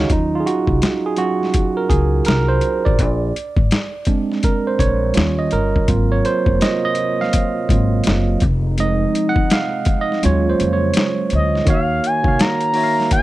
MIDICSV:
0, 0, Header, 1, 6, 480
1, 0, Start_track
1, 0, Tempo, 722892
1, 66, Time_signature, 4, 2, 24, 8
1, 8781, End_track
2, 0, Start_track
2, 0, Title_t, "Analog synth lead"
2, 0, Program_c, 0, 81
2, 7534, Note_on_c, 0, 75, 82
2, 7744, Note_off_c, 0, 75, 0
2, 7776, Note_on_c, 0, 77, 92
2, 8008, Note_on_c, 0, 80, 97
2, 8018, Note_off_c, 0, 77, 0
2, 8236, Note_on_c, 0, 82, 104
2, 8246, Note_off_c, 0, 80, 0
2, 8711, Note_off_c, 0, 82, 0
2, 8715, Note_on_c, 0, 80, 103
2, 8781, Note_off_c, 0, 80, 0
2, 8781, End_track
3, 0, Start_track
3, 0, Title_t, "Tine electric piano"
3, 0, Program_c, 1, 4
3, 0, Control_c, 1, 64, 127
3, 0, Note_on_c, 1, 49, 75
3, 0, Note_on_c, 1, 51, 83
3, 0, Note_on_c, 1, 63, 67
3, 0, Note_on_c, 1, 66, 69
3, 0, Note_on_c, 1, 68, 70
3, 0, Note_on_c, 1, 73, 68
3, 0, Note_on_c, 1, 75, 69
3, 0, Note_on_c, 1, 77, 78
3, 63, Note_on_c, 1, 54, 46
3, 65, Note_on_c, 1, 61, 42
3, 69, Note_on_c, 1, 65, 55
3, 74, Note_off_c, 1, 73, 0
3, 74, Control_c, 1, 64, 0
3, 76, Note_off_c, 1, 49, 0
3, 76, Note_off_c, 1, 51, 0
3, 76, Note_off_c, 1, 75, 0
3, 78, Note_off_c, 1, 77, 0
3, 79, Note_off_c, 1, 63, 0
3, 79, Note_off_c, 1, 68, 0
3, 80, Note_off_c, 1, 66, 0
3, 82, Note_on_c, 1, 63, 65
3, 181, Control_c, 1, 64, 127
3, 227, Note_off_c, 1, 65, 0
3, 231, Note_off_c, 1, 63, 0
3, 235, Note_on_c, 1, 65, 68
3, 267, Note_on_c, 1, 68, 61
3, 281, Note_off_c, 1, 65, 0
3, 303, Note_off_c, 1, 68, 0
3, 308, Note_on_c, 1, 66, 83
3, 704, Note_on_c, 1, 68, 77
3, 711, Note_off_c, 1, 66, 0
3, 770, Note_off_c, 1, 54, 0
3, 772, Note_off_c, 1, 61, 0
3, 778, Note_on_c, 1, 54, 45
3, 779, Note_on_c, 1, 65, 47
3, 780, Note_on_c, 1, 61, 39
3, 786, Note_on_c, 1, 66, 83
3, 791, Note_off_c, 1, 68, 0
3, 998, Note_off_c, 1, 54, 0
3, 998, Note_off_c, 1, 61, 0
3, 998, Note_off_c, 1, 65, 0
3, 1175, Note_on_c, 1, 70, 79
3, 1190, Note_off_c, 1, 66, 0
3, 1257, Note_on_c, 1, 68, 78
3, 1266, Note_off_c, 1, 70, 0
3, 1503, Note_on_c, 1, 70, 92
3, 1509, Note_off_c, 1, 68, 0
3, 1650, Note_on_c, 1, 72, 86
3, 1662, Note_off_c, 1, 70, 0
3, 1760, Note_off_c, 1, 72, 0
3, 1894, Note_on_c, 1, 74, 83
3, 1993, Control_c, 1, 64, 0
3, 2114, Control_c, 1, 64, 127
3, 2349, Note_off_c, 1, 74, 0
3, 2707, Note_on_c, 1, 56, 56
3, 2708, Note_on_c, 1, 60, 49
3, 2713, Note_on_c, 1, 62, 53
3, 2951, Note_on_c, 1, 70, 84
3, 3050, Note_off_c, 1, 56, 0
3, 3051, Note_off_c, 1, 60, 0
3, 3054, Note_off_c, 1, 62, 0
3, 3103, Note_on_c, 1, 72, 72
3, 3106, Note_off_c, 1, 70, 0
3, 3185, Note_on_c, 1, 73, 85
3, 3190, Note_off_c, 1, 72, 0
3, 3413, Note_on_c, 1, 55, 56
3, 3414, Note_on_c, 1, 61, 48
3, 3421, Note_on_c, 1, 65, 62
3, 3433, Control_c, 1, 64, 0
3, 3553, Control_c, 1, 64, 127
3, 3577, Note_on_c, 1, 75, 75
3, 3590, Note_off_c, 1, 73, 0
3, 3667, Note_off_c, 1, 75, 0
3, 3669, Note_on_c, 1, 70, 79
3, 3875, Note_off_c, 1, 55, 0
3, 3876, Note_off_c, 1, 61, 0
3, 3879, Note_off_c, 1, 65, 0
3, 3899, Note_on_c, 1, 54, 49
3, 3905, Note_on_c, 1, 60, 48
3, 3907, Note_on_c, 1, 58, 44
3, 3908, Note_on_c, 1, 65, 56
3, 3914, Control_c, 1, 64, 0
3, 4042, Control_c, 1, 64, 127
3, 4061, Note_on_c, 1, 73, 84
3, 4072, Note_off_c, 1, 70, 0
3, 4141, Note_off_c, 1, 73, 0
3, 4154, Note_on_c, 1, 72, 93
3, 4396, Note_on_c, 1, 75, 89
3, 4397, Note_off_c, 1, 72, 0
3, 4540, Note_off_c, 1, 75, 0
3, 4548, Note_on_c, 1, 75, 92
3, 4596, Note_off_c, 1, 54, 0
3, 4599, Note_off_c, 1, 60, 0
3, 4600, Note_off_c, 1, 58, 0
3, 4600, Note_off_c, 1, 65, 0
3, 4788, Note_on_c, 1, 77, 97
3, 4790, Note_off_c, 1, 75, 0
3, 5114, Note_on_c, 1, 54, 50
3, 5115, Note_on_c, 1, 58, 46
3, 5117, Note_on_c, 1, 60, 42
3, 5120, Note_on_c, 1, 65, 55
3, 5237, Note_off_c, 1, 77, 0
3, 5326, Note_off_c, 1, 54, 0
3, 5327, Note_off_c, 1, 58, 0
3, 5328, Note_off_c, 1, 60, 0
3, 5329, Note_off_c, 1, 65, 0
3, 5595, Control_c, 1, 64, 0
3, 5711, Control_c, 1, 64, 127
3, 5835, Note_on_c, 1, 56, 55
3, 5837, Note_on_c, 1, 60, 48
3, 5841, Note_on_c, 1, 63, 54
3, 5844, Note_on_c, 1, 75, 89
3, 6164, Note_off_c, 1, 75, 0
3, 6169, Note_on_c, 1, 78, 98
3, 6236, Note_off_c, 1, 78, 0
3, 6325, Note_on_c, 1, 77, 100
3, 6524, Note_off_c, 1, 56, 0
3, 6525, Note_off_c, 1, 60, 0
3, 6527, Note_off_c, 1, 63, 0
3, 6645, Note_off_c, 1, 77, 0
3, 6648, Note_on_c, 1, 75, 88
3, 6715, Note_off_c, 1, 75, 0
3, 6793, Note_on_c, 1, 54, 58
3, 6793, Note_on_c, 1, 56, 55
3, 6794, Control_c, 1, 64, 0
3, 6796, Note_on_c, 1, 61, 57
3, 6799, Note_on_c, 1, 65, 66
3, 6809, Note_on_c, 1, 73, 91
3, 6927, Control_c, 1, 64, 127
3, 6962, Note_off_c, 1, 73, 0
3, 6969, Note_on_c, 1, 72, 72
3, 7122, Note_off_c, 1, 72, 0
3, 7124, Note_on_c, 1, 73, 72
3, 7133, Note_off_c, 1, 54, 0
3, 7134, Note_off_c, 1, 56, 0
3, 7135, Note_off_c, 1, 61, 0
3, 7137, Note_off_c, 1, 65, 0
3, 7339, Note_off_c, 1, 73, 0
3, 7735, Note_on_c, 1, 51, 78
3, 7744, Note_on_c, 1, 58, 72
3, 7753, Control_c, 1, 64, 0
3, 7753, Note_on_c, 1, 66, 67
3, 7760, Note_on_c, 1, 73, 75
3, 7770, Note_on_c, 1, 77, 96
3, 7859, Control_c, 1, 64, 127
3, 8077, Note_off_c, 1, 51, 0
3, 8081, Note_off_c, 1, 58, 0
3, 8086, Note_off_c, 1, 66, 0
3, 8089, Note_off_c, 1, 73, 0
3, 8095, Note_off_c, 1, 77, 0
3, 8120, Note_on_c, 1, 51, 61
3, 8127, Note_on_c, 1, 58, 55
3, 8134, Note_on_c, 1, 66, 59
3, 8144, Note_on_c, 1, 73, 61
3, 8153, Note_on_c, 1, 77, 70
3, 8424, Note_off_c, 1, 51, 0
3, 8428, Note_off_c, 1, 58, 0
3, 8431, Note_off_c, 1, 66, 0
3, 8437, Note_off_c, 1, 73, 0
3, 8441, Note_off_c, 1, 77, 0
3, 8447, Note_on_c, 1, 51, 67
3, 8455, Note_on_c, 1, 58, 64
3, 8465, Note_on_c, 1, 66, 58
3, 8475, Note_on_c, 1, 73, 59
3, 8482, Note_on_c, 1, 76, 57
3, 8522, Note_on_c, 1, 77, 77
3, 8529, Note_off_c, 1, 76, 0
3, 8781, Note_off_c, 1, 51, 0
3, 8781, Note_off_c, 1, 58, 0
3, 8781, Note_off_c, 1, 66, 0
3, 8781, Note_off_c, 1, 73, 0
3, 8781, Note_off_c, 1, 77, 0
3, 8781, End_track
4, 0, Start_track
4, 0, Title_t, "Analog synth pad"
4, 0, Program_c, 2, 89
4, 3906, Note_on_c, 2, 48, 76
4, 3907, Note_on_c, 2, 65, 83
4, 3908, Note_on_c, 2, 54, 70
4, 3909, Note_on_c, 2, 58, 71
4, 5569, Note_off_c, 2, 65, 0
4, 5570, Note_off_c, 2, 54, 0
4, 5571, Note_off_c, 2, 58, 0
4, 5587, Note_on_c, 2, 53, 71
4, 5593, Note_on_c, 2, 56, 71
4, 5595, Note_on_c, 2, 63, 80
4, 6759, Note_off_c, 2, 48, 0
4, 6775, Note_off_c, 2, 53, 0
4, 6778, Note_off_c, 2, 63, 0
4, 6787, Note_on_c, 2, 58, 72
4, 6788, Note_on_c, 2, 65, 87
4, 6792, Note_on_c, 2, 49, 75
4, 7728, Note_off_c, 2, 56, 0
4, 7737, Note_off_c, 2, 58, 0
4, 7737, Note_off_c, 2, 65, 0
4, 7739, Note_off_c, 2, 49, 0
4, 8781, End_track
5, 0, Start_track
5, 0, Title_t, "Upright bass"
5, 0, Program_c, 3, 32
5, 71, Note_on_c, 3, 39, 82
5, 273, Note_off_c, 3, 39, 0
5, 453, Note_on_c, 3, 36, 71
5, 530, Note_off_c, 3, 36, 0
5, 1268, Note_on_c, 3, 37, 82
5, 1471, Note_off_c, 3, 37, 0
5, 1514, Note_on_c, 3, 36, 77
5, 1715, Note_off_c, 3, 36, 0
5, 1910, Note_on_c, 3, 33, 77
5, 1990, Note_off_c, 3, 33, 0
5, 1990, Note_on_c, 3, 34, 86
5, 2193, Note_off_c, 3, 34, 0
5, 2372, Note_on_c, 3, 32, 79
5, 2449, Note_off_c, 3, 32, 0
5, 3187, Note_on_c, 3, 34, 84
5, 3391, Note_off_c, 3, 34, 0
5, 3431, Note_on_c, 3, 39, 96
5, 3633, Note_off_c, 3, 39, 0
5, 3670, Note_on_c, 3, 31, 80
5, 3873, Note_off_c, 3, 31, 0
5, 3913, Note_on_c, 3, 32, 84
5, 4114, Note_off_c, 3, 32, 0
5, 4298, Note_on_c, 3, 30, 79
5, 4372, Note_off_c, 3, 30, 0
5, 5112, Note_on_c, 3, 32, 91
5, 5314, Note_off_c, 3, 32, 0
5, 5363, Note_on_c, 3, 30, 91
5, 5560, Note_off_c, 3, 30, 0
5, 5596, Note_on_c, 3, 29, 95
5, 6000, Note_off_c, 3, 29, 0
5, 6805, Note_on_c, 3, 39, 94
5, 7001, Note_off_c, 3, 39, 0
5, 7044, Note_on_c, 3, 41, 85
5, 7241, Note_off_c, 3, 41, 0
5, 7519, Note_on_c, 3, 38, 89
5, 7718, Note_off_c, 3, 38, 0
5, 7753, Note_on_c, 3, 39, 85
5, 7954, Note_off_c, 3, 39, 0
5, 8133, Note_on_c, 3, 36, 70
5, 8210, Note_off_c, 3, 36, 0
5, 8781, End_track
6, 0, Start_track
6, 0, Title_t, "Drums"
6, 64, Note_on_c, 9, 42, 70
6, 65, Note_on_c, 9, 36, 95
6, 131, Note_off_c, 9, 42, 0
6, 132, Note_off_c, 9, 36, 0
6, 312, Note_on_c, 9, 42, 63
6, 378, Note_off_c, 9, 42, 0
6, 448, Note_on_c, 9, 36, 85
6, 514, Note_off_c, 9, 36, 0
6, 544, Note_on_c, 9, 42, 76
6, 552, Note_on_c, 9, 38, 108
6, 610, Note_off_c, 9, 42, 0
6, 618, Note_off_c, 9, 38, 0
6, 773, Note_on_c, 9, 42, 61
6, 840, Note_off_c, 9, 42, 0
6, 949, Note_on_c, 9, 38, 30
6, 1015, Note_off_c, 9, 38, 0
6, 1020, Note_on_c, 9, 42, 77
6, 1025, Note_on_c, 9, 36, 81
6, 1087, Note_off_c, 9, 42, 0
6, 1092, Note_off_c, 9, 36, 0
6, 1260, Note_on_c, 9, 36, 65
6, 1265, Note_on_c, 9, 42, 53
6, 1326, Note_off_c, 9, 36, 0
6, 1331, Note_off_c, 9, 42, 0
6, 1493, Note_on_c, 9, 42, 77
6, 1516, Note_on_c, 9, 38, 104
6, 1559, Note_off_c, 9, 42, 0
6, 1583, Note_off_c, 9, 38, 0
6, 1735, Note_on_c, 9, 42, 61
6, 1801, Note_off_c, 9, 42, 0
6, 1902, Note_on_c, 9, 36, 77
6, 1968, Note_off_c, 9, 36, 0
6, 1984, Note_on_c, 9, 42, 77
6, 1985, Note_on_c, 9, 36, 101
6, 2050, Note_off_c, 9, 42, 0
6, 2051, Note_off_c, 9, 36, 0
6, 2233, Note_on_c, 9, 42, 68
6, 2299, Note_off_c, 9, 42, 0
6, 2367, Note_on_c, 9, 36, 97
6, 2434, Note_off_c, 9, 36, 0
6, 2464, Note_on_c, 9, 42, 76
6, 2472, Note_on_c, 9, 38, 113
6, 2530, Note_off_c, 9, 42, 0
6, 2538, Note_off_c, 9, 38, 0
6, 2690, Note_on_c, 9, 42, 58
6, 2702, Note_on_c, 9, 36, 90
6, 2757, Note_off_c, 9, 42, 0
6, 2768, Note_off_c, 9, 36, 0
6, 2866, Note_on_c, 9, 38, 33
6, 2932, Note_off_c, 9, 38, 0
6, 2941, Note_on_c, 9, 42, 76
6, 2947, Note_on_c, 9, 36, 82
6, 3007, Note_off_c, 9, 42, 0
6, 3013, Note_off_c, 9, 36, 0
6, 3181, Note_on_c, 9, 36, 75
6, 3188, Note_on_c, 9, 42, 61
6, 3248, Note_off_c, 9, 36, 0
6, 3255, Note_off_c, 9, 42, 0
6, 3413, Note_on_c, 9, 42, 79
6, 3436, Note_on_c, 9, 38, 103
6, 3479, Note_off_c, 9, 42, 0
6, 3502, Note_off_c, 9, 38, 0
6, 3657, Note_on_c, 9, 42, 57
6, 3724, Note_off_c, 9, 42, 0
6, 3823, Note_on_c, 9, 36, 81
6, 3889, Note_off_c, 9, 36, 0
6, 3904, Note_on_c, 9, 42, 79
6, 3906, Note_on_c, 9, 36, 116
6, 3971, Note_off_c, 9, 42, 0
6, 3973, Note_off_c, 9, 36, 0
6, 4149, Note_on_c, 9, 42, 69
6, 4216, Note_off_c, 9, 42, 0
6, 4291, Note_on_c, 9, 36, 96
6, 4358, Note_off_c, 9, 36, 0
6, 4389, Note_on_c, 9, 42, 72
6, 4397, Note_on_c, 9, 38, 119
6, 4456, Note_off_c, 9, 42, 0
6, 4464, Note_off_c, 9, 38, 0
6, 4615, Note_on_c, 9, 42, 68
6, 4681, Note_off_c, 9, 42, 0
6, 4794, Note_on_c, 9, 38, 29
6, 4861, Note_off_c, 9, 38, 0
6, 4867, Note_on_c, 9, 42, 85
6, 4872, Note_on_c, 9, 36, 87
6, 4933, Note_off_c, 9, 42, 0
6, 4939, Note_off_c, 9, 36, 0
6, 5106, Note_on_c, 9, 36, 74
6, 5114, Note_on_c, 9, 42, 58
6, 5173, Note_off_c, 9, 36, 0
6, 5181, Note_off_c, 9, 42, 0
6, 5336, Note_on_c, 9, 42, 82
6, 5359, Note_on_c, 9, 38, 122
6, 5402, Note_off_c, 9, 42, 0
6, 5426, Note_off_c, 9, 38, 0
6, 5580, Note_on_c, 9, 42, 59
6, 5590, Note_on_c, 9, 36, 94
6, 5646, Note_off_c, 9, 42, 0
6, 5656, Note_off_c, 9, 36, 0
6, 5828, Note_on_c, 9, 42, 78
6, 5894, Note_off_c, 9, 42, 0
6, 6076, Note_on_c, 9, 42, 66
6, 6142, Note_off_c, 9, 42, 0
6, 6214, Note_on_c, 9, 36, 89
6, 6280, Note_off_c, 9, 36, 0
6, 6309, Note_on_c, 9, 42, 76
6, 6317, Note_on_c, 9, 38, 118
6, 6376, Note_off_c, 9, 42, 0
6, 6384, Note_off_c, 9, 38, 0
6, 6541, Note_on_c, 9, 42, 66
6, 6549, Note_on_c, 9, 36, 96
6, 6608, Note_off_c, 9, 42, 0
6, 6616, Note_off_c, 9, 36, 0
6, 6720, Note_on_c, 9, 38, 31
6, 6787, Note_off_c, 9, 38, 0
6, 6793, Note_on_c, 9, 42, 87
6, 6859, Note_off_c, 9, 42, 0
6, 7037, Note_on_c, 9, 42, 61
6, 7103, Note_off_c, 9, 42, 0
6, 7261, Note_on_c, 9, 42, 84
6, 7285, Note_on_c, 9, 38, 110
6, 7328, Note_off_c, 9, 42, 0
6, 7351, Note_off_c, 9, 38, 0
6, 7504, Note_on_c, 9, 42, 61
6, 7570, Note_off_c, 9, 42, 0
6, 7672, Note_on_c, 9, 38, 32
6, 7739, Note_off_c, 9, 38, 0
6, 7747, Note_on_c, 9, 42, 74
6, 7748, Note_on_c, 9, 36, 111
6, 7813, Note_off_c, 9, 42, 0
6, 7815, Note_off_c, 9, 36, 0
6, 7994, Note_on_c, 9, 42, 66
6, 8060, Note_off_c, 9, 42, 0
6, 8130, Note_on_c, 9, 36, 86
6, 8196, Note_off_c, 9, 36, 0
6, 8230, Note_on_c, 9, 42, 78
6, 8238, Note_on_c, 9, 38, 113
6, 8296, Note_off_c, 9, 42, 0
6, 8304, Note_off_c, 9, 38, 0
6, 8370, Note_on_c, 9, 42, 48
6, 8436, Note_off_c, 9, 42, 0
6, 8457, Note_on_c, 9, 46, 47
6, 8523, Note_off_c, 9, 46, 0
6, 8631, Note_on_c, 9, 38, 32
6, 8698, Note_off_c, 9, 38, 0
6, 8704, Note_on_c, 9, 42, 78
6, 8707, Note_on_c, 9, 36, 78
6, 8770, Note_off_c, 9, 42, 0
6, 8773, Note_off_c, 9, 36, 0
6, 8781, End_track
0, 0, End_of_file